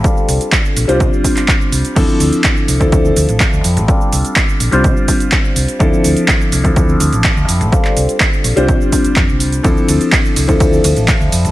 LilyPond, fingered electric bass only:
\new Staff \with { instrumentName = "Fingered electric bass" } { \clef bass \time 4/4 \key d \minor \tempo 4 = 125 r8 c,16 r8. bes,,16 c,16 c16 r4 r16 c,16 r16 | d,16 r16 d,16 r8. c,16 d,8 r16 d,16 a,,16 r16 d,16 f,16 a,,16 | r8 c,16 r8. bes,,16 c,16 c16 r4 r16 c,16 r16 | d,16 r16 d,16 r8. c,16 d,8 r16 d,16 a,,16 r16 d,16 f,16 a,,16 |
r8 c,16 r8. bes,,16 c,16 c16 r8. f,16 c,8 r16 | d,16 r16 d,16 r8. c,16 d,8 r16 d,16 a,,16 r16 d,16 f,16 a,,16 | }